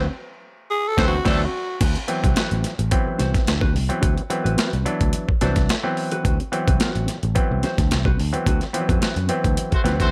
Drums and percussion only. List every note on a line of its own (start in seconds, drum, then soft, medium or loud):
0.98 kick loud
0.98 snare loud
1.25 kick loud
1.25 snare loud
1.25 crash medium
1.81 kick loud
1.81 closed hi-hat medium
1.81 crash loud
1.96 closed hi-hat soft
2.08 closed hi-hat medium
2.24 kick medium
2.24 closed hi-hat medium
2.36 snare loud
2.36 closed hi-hat medium
2.51 closed hi-hat soft
2.64 snare soft
2.64 closed hi-hat medium
2.79 closed hi-hat medium
2.91 kick loud
2.91 closed hi-hat medium
3.19 snare soft
3.19 closed hi-hat medium
3.34 kick medium
3.34 snare soft
3.34 closed hi-hat medium
3.47 snare loud
3.47 closed hi-hat medium
3.61 kick medium
3.76 open hi-hat medium
3.90 closed hi-hat medium
4.03 kick loud
4.03 closed hi-hat medium
4.18 closed hi-hat soft
4.30 closed hi-hat medium
4.46 closed hi-hat medium
4.58 snare loud
4.58 closed hi-hat medium
4.73 closed hi-hat soft
4.86 closed hi-hat medium
5.01 kick medium
5.01 closed hi-hat medium
5.13 closed hi-hat medium
5.29 kick medium
5.41 snare soft
5.41 closed hi-hat medium
5.56 kick medium
5.56 snare soft
5.56 closed hi-hat medium
5.69 snare loud
5.69 closed hi-hat medium
5.97 open hi-hat medium
6.11 closed hi-hat medium
6.25 kick loud
6.25 closed hi-hat medium
6.40 closed hi-hat soft
6.53 closed hi-hat medium
6.68 kick loud
6.68 closed hi-hat medium
6.80 snare loud
6.80 closed hi-hat medium
6.95 closed hi-hat soft
7.08 snare soft
7.08 closed hi-hat medium
7.23 closed hi-hat soft
7.36 kick loud
7.36 closed hi-hat medium
7.63 snare soft
7.63 closed hi-hat medium
7.78 kick medium
7.78 snare soft
7.78 closed hi-hat medium
7.91 snare loud
7.91 closed hi-hat medium
8.05 kick medium
8.19 open hi-hat medium
8.34 closed hi-hat medium
8.46 kick loud
8.46 closed hi-hat medium
8.61 snare soft
8.61 closed hi-hat soft
8.74 closed hi-hat medium
8.89 kick medium
8.89 closed hi-hat medium
9.02 snare loud
9.02 closed hi-hat medium
9.16 closed hi-hat soft
9.29 closed hi-hat medium
9.44 kick medium
9.44 closed hi-hat soft
9.57 closed hi-hat medium
9.72 kick medium
9.72 closed hi-hat soft
9.86 snare soft
9.86 closed hi-hat medium
10.00 kick medium
10.00 snare soft
10.00 closed hi-hat medium